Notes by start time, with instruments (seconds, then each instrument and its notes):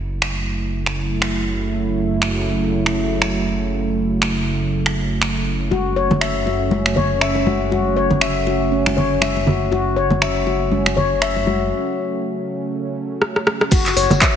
Already playing: detuned saw bass F#1, analog synth pad C#3 F#3 A3 E4
0.22 finger snap
0.86 finger snap
1.22 finger snap
2.22 finger snap
2.86 finger snap
3.22 finger snap
4.22 finger snap
4.86 finger snap
5.22 finger snap
5.71 detuned saw bass F#1, analog synth pad C#4, handpan F#4, muted conga, high conga
5.96 handpan C#5
6.11 muted conga, high conga, low conga
6.21 handpan E5, finger snap
6.46 handpan F#4, muted conga
6.71 handpan C#4, high conga
6.86 finger snap, muted conga
6.96 handpan C#5, low conga
7.21 handpan E5, finger snap
7.35 muted conga
7.46 handpan F#4, high conga
7.72 handpan F#4, muted conga, high conga
7.96 handpan C#5
8.10 muted conga, high conga, low conga
8.21 handpan E5, finger snap
8.47 handpan F#4, muted conga
8.72 handpan C#4
8.86 finger snap, muted conga, high conga
8.97 handpan C#5, low conga
9.21 handpan E5, finger snap, high conga
9.37 muted conga
9.46 handpan F#4, low conga
9.72 handpan F#4, muted conga, high conga
9.96 handpan C#5
10.10 muted conga, high conga, low conga
10.22 handpan E5, finger snap
10.47 handpan F#4, muted conga
10.71 handpan C#4, high conga
10.86 finger snap, muted conga
10.97 handpan C#5, low conga
11.22 handpan E5, finger snap
11.36 muted conga
11.47 handpan F#4, high conga
13.22 cross-stick
13.36 cross-stick
13.47 cross-stick
13.61 cross-stick
13.71 detuned saw bass F#1, handpan F#4, kick, closed hi-hat, crash, tambourine, muted conga, high conga
13.86 clap, closed hi-hat, tambourine
13.97 detuned saw bass F#1, handpan C#5, open hi-hat, tambourine
14.10 detuned saw bass F#1, closed hi-hat, tambourine, muted conga, high conga, low conga
14.22 handpan E5, finger snap, kick, clap, closed hi-hat, tambourine